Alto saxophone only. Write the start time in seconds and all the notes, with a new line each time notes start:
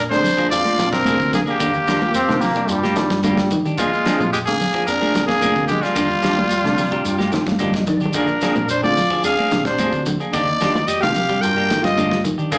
0.11 D4
0.52 F4
0.92 C4
1.35 A#3
1.47 A#3
3.80 G#3
4.33 G#3
4.47 A#3
4.88 D4
5.28 A#3
5.71 G#3
5.83 G3
8.18 D4
8.71 D4
8.85 F4
9.24 G#4
9.66 D4
10.32 D#4
10.87 G4
11.01 G4
11.41 A#4
11.83 F4
12.53 A#3